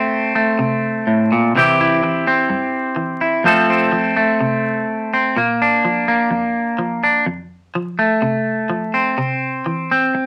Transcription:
Already playing: clean electric guitar A3 C4 F4
0.35 clean electric guitar A3
0.59 clean electric guitar C3
1.07 clean electric guitar A2
1.32 clean electric guitar A#2
1.55 clean electric guitar C3 E3 C4 E4 G4
1.81 clean electric guitar E4
2.03 clean electric guitar E3
2.27 clean electric guitar C4
2.50 clean electric guitar G2
2.96 clean electric guitar E3
3.21 clean electric guitar E4
3.44 clean electric guitar F2 F3 A3 C4 A4
3.70 clean electric guitar C4
3.92 clean electric guitar F3
4.17 clean electric guitar A3
4.41 clean electric guitar C3
5.13 clean electric guitar C4
5.36 clean electric guitar A#2 A#3
5.62 clean electric guitar D4
5.85 clean electric guitar F3
6.08 clean electric guitar A#3
6.31 clean electric guitar F2
6.79 clean electric guitar F3
7.03 clean electric guitar D4
7.26 clean electric guitar F2
7.75 clean electric guitar F3
7.99 clean electric guitar A3
8.22 clean electric guitar C3
8.70 clean electric guitar F3
8.94 clean electric guitar C4
9.18 clean electric guitar C3
9.66 clean electric guitar E3
9.91 clean electric guitar C4
10.15 muted clean electric guitar stroke

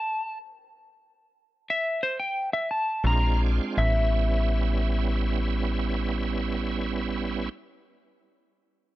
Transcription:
Already playing: electric slide guitar A5
1.70 electric slide guitar E5
2.03 electric slide guitar C5
2.20 electric slide guitar G5
2.53 electric slide guitar E5
2.71 electric slide guitar A5
3.04 fm bass A#1, tonewheel organ G#3 C4 D4 F4, electric slide guitar A#5
3.78 fm bass A1, tonewheel organ G3 B3 C#4 E4, electric slide guitar E5

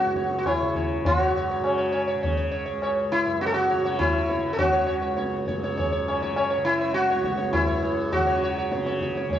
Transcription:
Already playing: tanpura C#2 C#3, sitar F#4 C#5
0.01 tabla te
0.05 tanpura F#2
0.16 sitar C#5, tabla ke
0.31 tabla te
0.38 sitar F#4
0.46 sitar E4 C#5, tabla na, tabla ge
0.61 tanpura C#3
0.75 sitar C#5, tabla ge
1.05 tanpura F#2, sitar F#4, tabla tin, tabla ge
1.19 sitar C#5
1.37 sitar C#5
1.51 sitar C#5
1.60 tanpura C#3, sitar C#5, tabla na
1.78 sitar C#5
1.92 sitar C#5, tabla na
2.08 sitar C#5
2.15 tanpura C#3
2.23 sitar C#5, tabla tin, tabla ge
2.37 sitar C#5
2.52 sitar C#5
2.66 sitar C#5
2.71 tanpura C#2
2.82 sitar C#5, tabla na
3.12 sitar E4
3.26 tanpura F#2, sitar C#5
3.41 sitar F#4, tabla te
3.46 sitar A4
3.54 sitar F#4, tabla te
3.70 sitar C#5, tabla ke
3.81 tanpura C#3
3.85 sitar C#5, tabla te
3.99 sitar E4, tabla na, tabla ge
4.30 sitar C#5, tabla te
4.36 tanpura C#3
4.53 sitar A4
4.59 sitar F#4, tabla tin, tabla ge
4.73 sitar C#5
4.87 tanpura C#2, sitar C#5
5.02 sitar C#5
5.17 sitar C#5, tabla te
5.33 tabla te
5.46 tanpura F#2, sitar C#5, tabla ke
5.64 sitar C#5, tabla te
5.78 sitar C#5, tabla tin, tabla ge
5.92 sitar C#5
6.00 tanpura C#3
6.08 sitar C#5, tabla na
6.23 sitar C#5, tabla ke
6.37 sitar C#5, tabla na
6.50 sitar C#5
6.58 tanpura C#3
6.65 sitar E4
6.81 sitar C#5
6.94 sitar F#4, tabla te
7.10 tanpura C#2, sitar C#5, tabla te
7.24 sitar C#5, tabla ke
7.37 sitar C#5, tabla te
7.53 sitar E4, tabla na, tabla ge
7.66 tanpura F#2, sitar C#5
7.82 sitar C#5, tabla te
8.12 sitar F#4, tabla tin, tabla ge
8.19 tanpura C#3
8.26 sitar C#5
8.43 sitar C#5
8.58 sitar C#5
8.71 tanpura C#3, sitar C#5, tabla te
8.86 sitar C#5, tabla te
9.01 sitar C#5, tabla ke
9.15 sitar C#5, tabla te
9.27 tanpura C#2, tabla tin, tabla ge
9.33 sitar C#5

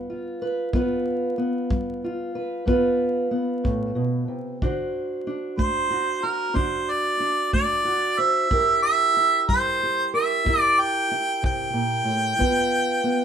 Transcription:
Already playing: steel-string acoustic guitar G3 B3 B4
0.10 steel-string acoustic guitar F4
0.42 steel-string acoustic guitar B4
0.73 steel-string acoustic guitar G2 B3 F4 B4, kick
1.38 steel-string acoustic guitar B3
1.70 steel-string acoustic guitar G3, kick
2.04 steel-string acoustic guitar F4
2.35 steel-string acoustic guitar B4
2.66 steel-string acoustic guitar G2 B3 F4 B4, kick
3.31 steel-string acoustic guitar B3
3.64 steel-string acoustic guitar A2, kick
3.95 steel-string acoustic guitar B2
4.28 steel-string acoustic guitar C3
4.62 steel-string acoustic guitar D3 D4 F#4 C5, kick
5.27 steel-string acoustic guitar D4
5.57 steel-string acoustic guitar A3, harmonica C5, kick
5.90 steel-string acoustic guitar F#4
6.23 steel-string acoustic guitar F#4, harmonica A#4
6.54 steel-string acoustic guitar D3 D4 F#4, harmonica C5, kick
6.90 harmonica D5
7.20 steel-string acoustic guitar D4
7.53 steel-string acoustic guitar A3, harmonica D5, kick
7.85 steel-string acoustic guitar F#4
8.18 steel-string acoustic guitar C5, harmonica E5
8.51 steel-string acoustic guitar C3 E4 G4 A#4, kick
8.83 harmonica E5
9.17 steel-string acoustic guitar E4
9.49 steel-string acoustic guitar G3, harmonica C5, kick
9.83 steel-string acoustic guitar G4
10.14 steel-string acoustic guitar A#4, harmonica E5
10.45 steel-string acoustic guitar C3 E4 G4 A#4, kick
10.60 harmonica D5
10.80 harmonica G5
11.11 steel-string acoustic guitar E4
11.42 steel-string acoustic guitar C3, harmonica G5, kick
11.73 steel-string acoustic guitar A#2
12.05 steel-string acoustic guitar A2
12.38 steel-string acoustic guitar G2 B3 F4 B4, kick
13.04 steel-string acoustic guitar B3

